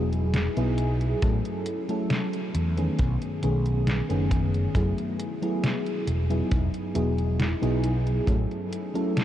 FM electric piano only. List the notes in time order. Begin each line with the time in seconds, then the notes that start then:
Already playing: F#3 B3 D#4 E4 G#4
0.56 F#3 B3 D#4 E4 G#4
1.22 F#3 A3 C#4 E4 A4
1.88 F#3 A3 C#4 E4 A4
2.77 D#3 A3 B3 C#4 G#4
3.42 D#3 A3 B3 C#4 G#4
4.09 D#3 A3 B3 C#4 G#4
4.75 F#3 A3 B3 E4 G#4
5.42 F#3 A3 B3 E4 G#4
6.30 F#3 B3 D#4 E4 G#4
6.94 F#3 B3 D#4 E4 G#4
7.61 F#3 B3 D#4 E4 G#4
8.26 F#3 A3 C#4 E4 A4
8.94 F#3 A3 C#4 E4 A4